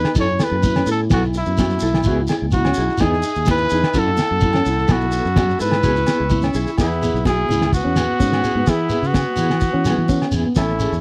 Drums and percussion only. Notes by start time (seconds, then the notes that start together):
0.04 snare, low agogo
0.15 kick, shekere
0.39 snare, muted conga, high conga, low agogo, shekere
0.63 kick, high conga, shekere
0.76 snare, low agogo
0.86 shekere
1.10 kick, snare, muted conga, low agogo, shekere
1.23 snare
1.34 shekere
1.45 shekere
1.58 kick, snare, muted conga, high conga, low conga, low agogo, shekere
1.70 snare, shekere
1.80 shekere
1.94 snare, low agogo
2.03 kick, muted conga, shekere
2.27 snare, muted conga, high conga, low agogo, shekere
2.51 kick, high conga, shekere
2.65 snare, low agogo
2.74 shekere
2.89 snare
2.98 kick, snare, muted conga, low agogo, shekere
3.13 snare
3.23 shekere
3.35 shekere
3.46 kick, snare, muted conga, high conga, low agogo, shekere
3.58 snare, shekere
3.70 shekere
3.83 snare, low agogo
3.94 kick, muted conga, shekere
4.17 snare, muted conga, high conga, low agogo, shekere
4.40 kick, high conga, shekere
4.53 snare, low agogo
4.66 shekere
4.78 snare
4.88 kick, snare, muted conga, low agogo, shekere
5.01 shekere
5.12 shekere
5.25 shekere
5.36 kick, snare, muted conga, high conga, low conga, low agogo, shekere
5.50 shekere
5.60 shekere
5.71 snare, low agogo, shekere
5.83 kick, muted conga, shekere
5.96 shekere
6.07 snare, muted conga, high conga, low agogo, shekere
6.30 kick, high conga, shekere
6.42 snare, low agogo, shekere
6.54 shekere
6.67 snare, shekere
6.78 kick, snare, muted conga, low agogo, shekere
6.90 snare
7.02 muted conga, shekere
7.16 shekere
7.25 kick, snare, high conga, low agogo, shekere
7.49 high conga, shekere
7.61 snare, low agogo
7.73 kick, muted conga, shekere
7.96 snare, low agogo, shekere
8.20 kick, high conga, shekere
8.32 snare, low agogo
8.44 muted conga, shekere
8.67 kick, snare, muted conga, low agogo, shekere
8.89 muted conga, shekere
9.03 shekere
9.14 kick, snare, high conga, low agogo, shekere
9.36 shekere
9.50 snare, low agogo
9.61 kick, muted conga, shekere
9.85 snare, high conga, low conga, low agogo, shekere
10.08 kick, high conga, shekere
10.22 snare, low agogo
10.31 muted conga, shekere
10.55 kick, snare, muted conga, low agogo, shekere
10.69 snare
10.80 shekere
10.93 shekere